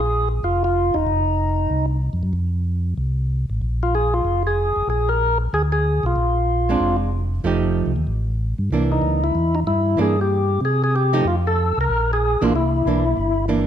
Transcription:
Already playing: tonewheel organ A#1
0.00 tonewheel organ G#4
0.43 tonewheel organ F1 F4
0.64 tonewheel organ F4
0.94 tonewheel organ E1 D#4
1.07 tonewheel organ F1
1.70 tonewheel organ C2
2.13 tonewheel organ F2
2.23 tonewheel organ F#2
2.33 tonewheel organ F2
2.97 tonewheel organ C2
3.50 tonewheel organ A1
3.61 tonewheel organ A#1
3.83 tonewheel organ F4
3.95 tonewheel organ G#4
4.14 tonewheel organ F4
4.25 tonewheel organ F1
4.47 tonewheel organ G#4
4.76 tonewheel organ F1
4.88 tonewheel organ A#1 G#4
5.09 tonewheel organ A#4
5.53 tonewheel organ D2 G#4
5.72 tonewheel organ G#4
6.03 tonewheel organ B1 F4
6.16 tonewheel organ A#1
6.69 hollow-body jazz guitar G#3 C4 D4
6.80 tonewheel organ F1
7.44 tonewheel organ F1, hollow-body jazz guitar F3 A3 D#4 G4
7.86 tonewheel organ C2
7.96 tonewheel organ D#2
8.07 tonewheel organ A1
8.58 tonewheel organ G2
8.71 tonewheel organ C2, hollow-body jazz guitar E3 A#3 D4
8.92 tonewheel organ D#4
9.02 tonewheel organ C#2
9.24 tonewheel organ E4
9.35 tonewheel organ E2
9.55 tonewheel organ D#4
9.67 tonewheel organ G2 E4
9.97 tonewheel organ G2, hollow-body jazz guitar E3 A#3 D4
10.01 tonewheel organ G#4
10.21 tonewheel organ G4
10.61 tonewheel organ C3 G#4
10.84 tonewheel organ G#4
10.96 tonewheel organ G4
11.13 hollow-body jazz guitar F3 A3 D#4 G4
11.25 tonewheel organ F2 F4
11.47 tonewheel organ A4
11.78 tonewheel organ C2 A#4
11.90 tonewheel organ A#1
12.13 tonewheel organ G#4
12.41 tonewheel organ A#1 F4, hollow-body jazz guitar E3 A#3 D4
12.53 tonewheel organ C2 E4
12.86 tonewheel organ B1, hollow-body jazz guitar E3 A#3 D4
13.17 tonewheel organ G1
13.48 hollow-body jazz guitar E3 A#3 D4

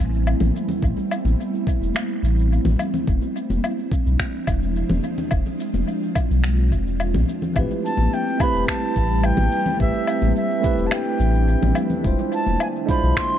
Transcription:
Already playing: ambient pad G3 A3 B3 C4 E4
0.00 sub bass A1, cabasa
0.15 cabasa
0.27 cabasa, low woodblock
0.40 sub bass A1, high conga, low conga, cabasa
0.56 cabasa
0.69 low conga, cabasa
0.83 sub bass A1, kick, cabasa
0.99 cabasa
1.11 cabasa, low woodblock
1.25 sub bass A1, high conga, cabasa
1.41 cabasa
1.55 cabasa
1.67 kick, cabasa
1.81 sub bass E1, cabasa
1.95 finger snap, high conga, cabasa, low woodblock
2.11 cabasa
2.23 sub bass A1, cabasa
2.39 cabasa
2.53 cabasa
2.65 sub bass A1, high conga, low conga, cabasa
2.79 cabasa, low woodblock
2.94 low conga, cabasa
3.07 sub bass E1, ambient pad F3 G#3 D4 E4, kick, cabasa
3.23 cabasa
3.36 cabasa
3.50 sub bass E1, high conga, cabasa
3.64 cabasa, low woodblock
3.79 cabasa
3.92 kick, cabasa
4.07 sub bass B1, cabasa
4.20 finger snap, kick, high conga, cabasa
4.35 cabasa
4.47 sub bass E1, kick, cabasa, low woodblock
4.62 cabasa
4.76 cabasa
4.89 sub bass E1, high conga, low conga, cabasa
5.04 cabasa
5.18 low conga, cabasa
5.31 sub bass E1, ambient pad F4, kick, cabasa, low woodblock
5.47 cabasa
5.60 cabasa
5.74 sub bass E1, high conga, cabasa
5.88 cabasa
6.03 cabasa
6.15 kick, cabasa, low woodblock
6.30 sub bass B1, cabasa
6.44 finger snap, high conga, cabasa
6.59 cabasa
6.72 sub bass E1, kick, cabasa
6.87 cabasa
7.00 cabasa, low woodblock
7.14 sub bass B1, high conga, low conga, cabasa
7.29 cabasa
7.42 low conga, cabasa
7.54 sub bass A1, ambient pad G3 A3 E4 B4, tine electric piano A3 C4 E4, kick, cabasa, low woodblock
7.58 tine electric piano G4 B4
7.72 cabasa
7.85 flute A5, cabasa
7.97 sub bass A1, high conga, cabasa
8.13 flute G5, cabasa
8.28 cabasa
8.38 tine electric piano A3 C4 E4 G4, flute B5, kick, cabasa, low woodblock
8.43 tine electric piano B4
8.54 sub bass E1, cabasa
8.67 flute A5, finger snap, kick, high conga, cabasa
8.84 cabasa
8.96 sub bass A1, kick, cabasa
9.11 cabasa
9.23 flute G5, cabasa, low woodblock
9.37 sub bass A1, high conga, low conga, cabasa
9.52 cabasa
9.66 low conga, cabasa
9.78 sub bass A1, tine electric piano A3 C4 E4 G4, ambient pad D4, flute E5, kick, cabasa
9.83 tine electric piano B4
9.94 cabasa
10.07 cabasa, low woodblock
10.22 sub bass A1, high conga, cabasa
10.36 flute E5, cabasa
10.51 cabasa
10.61 tine electric piano A3 C4 E4 G4, kick, cabasa
10.66 tine electric piano B4
10.78 sub bass E1, cabasa
10.87 flute A5
10.91 flute G5, finger snap, high conga, cabasa, low woodblock
11.07 cabasa
11.20 sub bass A1, cabasa
11.35 cabasa
11.48 cabasa
11.62 sub bass A1, high conga, low conga, cabasa
11.75 cabasa, low woodblock
11.90 low conga, cabasa
12.02 sub bass E1, ambient pad D3 F3 G#3 D4 E5, tine electric piano G#3 D4 E4 F4, kick, cabasa
12.07 tine electric piano C5
12.19 cabasa
12.32 flute A5, cabasa
12.46 sub bass E1, high conga, cabasa
12.60 flute G#5, cabasa, low woodblock
12.76 cabasa
12.86 tine electric piano G#3 D4 E4 F4, kick, cabasa
12.90 tine electric piano C5, flute B5
13.03 sub bass B1, cabasa
13.16 flute C6, finger snap, kick, high conga, cabasa
13.32 cabasa

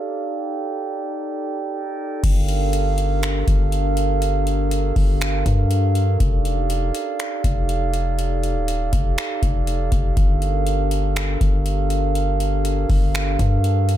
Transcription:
Already playing: glass harmonica D#4 G4 A4 D5 F5
0.25 glass harmonica G5
2.24 808-style bass G1, glass harmonica D4 G4 A4 A#4 F5, kick, closed hi-hat, crash
2.48 closed hi-hat
2.73 closed hi-hat
2.98 closed hi-hat
3.23 finger snap, closed hi-hat
3.48 808-style bass G1, kick, closed hi-hat
3.72 closed hi-hat
3.97 closed hi-hat
4.22 closed hi-hat
4.47 closed hi-hat
4.71 closed hi-hat
4.96 808-style bass G1, kick, open hi-hat
5.21 finger snap, closed hi-hat
5.46 808-style bass G2, kick, closed hi-hat
5.71 closed hi-hat
5.95 closed hi-hat
6.20 808-style bass F1, glass harmonica D#4 D5 F5, kick, closed hi-hat
6.45 closed hi-hat
6.70 closed hi-hat
6.95 closed hi-hat
7.20 finger snap, closed hi-hat
7.44 808-style bass F1, kick, closed hi-hat
7.69 closed hi-hat
7.94 closed hi-hat
8.19 closed hi-hat
8.44 closed hi-hat
8.56 808-style bass D#1
8.68 closed hi-hat
8.93 808-style bass F1, kick, closed hi-hat
9.18 finger snap, closed hi-hat
9.43 808-style bass F1, kick, closed hi-hat
9.67 closed hi-hat
9.92 808-style bass F1, kick, closed hi-hat
10.17 808-style bass G1, glass harmonica D4 A#4, kick, closed hi-hat
10.42 closed hi-hat
10.67 closed hi-hat
10.91 closed hi-hat
11.16 finger snap, closed hi-hat
11.41 808-style bass G1, kick, closed hi-hat
11.66 closed hi-hat
11.90 closed hi-hat
12.15 closed hi-hat
12.40 closed hi-hat
12.65 closed hi-hat
12.90 808-style bass G1, kick, open hi-hat
13.15 finger snap, closed hi-hat
13.39 808-style bass G2, kick, closed hi-hat
13.64 closed hi-hat
13.89 closed hi-hat

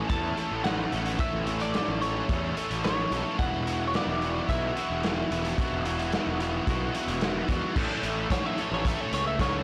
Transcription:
Already playing: distorted electric guitar E3 C#4 A4
0.09 picked electric bass E2, distorted electric guitar A2 E3 A3 C#4 A4, clean electric guitar A5, kick, closed hi-hat
0.37 distorted electric guitar A2 E3 A3 C#4 A4, closed hi-hat
0.51 picked electric bass A1
0.64 distorted electric guitar A2 E3 A3 C#4 A4, clean electric guitar F#5, snare, closed hi-hat
0.91 picked electric bass A1, distorted electric guitar A2 E3 A3 C#4 A4, closed hi-hat
1.06 closed hi-hat
1.19 distorted electric guitar A2 E3 A3 C#4 A4, clean electric guitar E5, kick, closed hi-hat
1.33 picked electric bass A1
1.46 distorted electric guitar A2 E3 A3 C#4 A4, closed hi-hat
1.60 clean electric guitar D5, closed hi-hat
1.74 distorted electric guitar A2 E3 A3 C#4 A4, snare, closed hi-hat
1.88 picked electric bass A1
2.01 distorted electric guitar A2 E3 A3 C#4 A4, clean electric guitar C#5, closed hi-hat
2.28 picked electric bass E2, distorted electric guitar A2 E3 A3 C#4 A4, kick, closed hi-hat
2.56 distorted electric guitar A2 E3 A3 C#4 A4, closed hi-hat
2.71 picked electric bass A1, closed hi-hat
2.84 distorted electric guitar A2 E3 A3 C#4 A4, clean electric guitar C#5, snare, closed hi-hat
3.11 picked electric bass B1, distorted electric guitar A2 E3 A3 C#4 A4, closed hi-hat
3.39 picked electric bass E1, distorted electric guitar E2 B2 E3 B3 E4 F#4, clean electric guitar F#5, kick, closed hi-hat
3.52 picked electric bass E1
3.67 distorted electric guitar E2 B2 E3 B3 E4 F#4, closed hi-hat
3.88 clean electric guitar C#5
3.94 distorted electric guitar E2 B2 E3 B3 E4 F#4, clean electric guitar D5, snare, closed hi-hat
4.07 picked electric bass E1
4.22 distorted electric guitar E2 B2 E3 B3 E4 F#4, closed hi-hat
4.49 picked electric bass B1, distorted electric guitar E2 B2 E3 B3 E4 F#4, clean electric guitar E5, kick, closed hi-hat
4.76 distorted electric guitar E2 B2 E3 B3 E4 F#4, closed hi-hat
4.90 picked electric bass E1
5.03 distorted electric guitar E2 B2 E3 B3 E4 F#4, snare, closed hi-hat
5.31 picked electric bass E1, distorted electric guitar E2 B2 E3 B3 E4 F#4, closed hi-hat
5.45 closed hi-hat
5.57 distorted electric guitar E2 B2 E3 B3 E4 F#4, kick, closed hi-hat
5.73 picked electric bass E1
5.85 distorted electric guitar E2 B2 E3 B3 E4 F#4, closed hi-hat
5.99 closed hi-hat
6.12 distorted electric guitar E2 B2 E3 B3 E4 F#4, snare, closed hi-hat
6.27 picked electric bass E1
6.40 distorted electric guitar E2 B2 E3 B3 E4 F#4, closed hi-hat
6.67 picked electric bass B1, distorted electric guitar E2 B2 E3 B3 E4 F#4, kick, closed hi-hat
6.94 distorted electric guitar E2 B2 E3 B3 E4 F#4, closed hi-hat
7.07 picked electric bass E1, closed hi-hat
7.21 distorted electric guitar E2 B2 E3 B3 E4 F#4, snare, closed hi-hat
7.48 distorted electric guitar E2 B2 E3 B3 E4 F#4, picked electric bass E2, kick, closed hi-hat
7.76 picked electric bass A1, distorted electric guitar A2 E3 A3 C#4 A4, kick, crash
8.03 picked electric bass A1, closed hi-hat
8.30 distorted electric guitar A2 E3 A3 C#4 A4, clean electric guitar C#5, kick, snare, closed hi-hat
8.46 clean electric guitar E5
8.58 distorted electric guitar A2 E3 A3 C#4 A4, clean electric guitar C#5, closed hi-hat
8.72 picked electric bass A1, clean electric guitar C#5, snare
8.85 distorted electric guitar A2 E3 A3 C#4 A4, clean electric guitar E5, kick, closed hi-hat
9.01 clean electric guitar C#5
9.13 picked electric bass C#2, clean electric guitar C#5, closed hi-hat
9.27 clean electric guitar E5
9.39 distorted electric guitar A2 E3 A3 C#4 A4, clean electric guitar C#5, kick, snare, closed hi-hat

